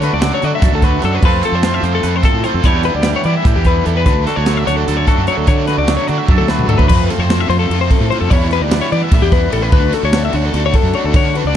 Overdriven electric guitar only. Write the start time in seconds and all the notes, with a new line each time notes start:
Already playing: D3
0.01 A3 D4 F#4
0.21 D3 A3 D4 F#4
0.41 A3 D4 F#4
0.62 D3 A3 D4 F#4
1.02 D3 A3 D4 F#4
1.23 F3 A3 C4 F4
1.44 A3 C4 F4
1.64 F3 A3 C4 F4
1.84 A3 C4 F4
2.05 F3 A3 C4 F4
2.45 F3 A3 C4 F4
2.64 E3 G3 B3 E4
2.86 G3 B3 E4
3.05 E3 G3 B3 E4
3.26 G3 B3 E4
3.45 E3 G3 B3 E4
3.86 E3 G3 B3 E4
4.05 D3 F#3 A3 D4
4.26 F#3 A3 D4
4.46 D3 F#3 A3 D4
4.66 F#3 A3 D4
4.87 D3 F#3 A3 D4
5.28 D3 F#3 A3 D4
5.47 D3 F#3 A3 D4
5.68 F#3 A3 D4
5.89 D3 F#3 A3 D4
6.08 F#3 A3 D4
6.28 D3 F#3 A3 D4
6.69 D3 F#3 A3 D4
6.91 F3 A3 C4 F4
7.11 A3 C4 F4
7.30 F3 A3 C4 F4
7.50 A3 C4 F4
7.70 F3 A3 C4 F4
8.11 F3 A3 C4 F4
8.32 E3 G3 B3 E4
8.52 G3 B3 E4
8.73 E3 G3 B3 E4
8.92 G3 B3 E4
9.12 E3 G3 B3 E4
9.52 E3 G3 B3 E4
9.71 D3 A3 D4 F#4
9.93 A3 D4 F#4
10.12 D3 A3 D4 F#4
10.32 A3 D4 F#4
10.53 D3 A3 D4 F#4
10.94 D3 A3 D4 F#4
11.13 D3 A3 D4 F#4
11.34 A3 D4 F#4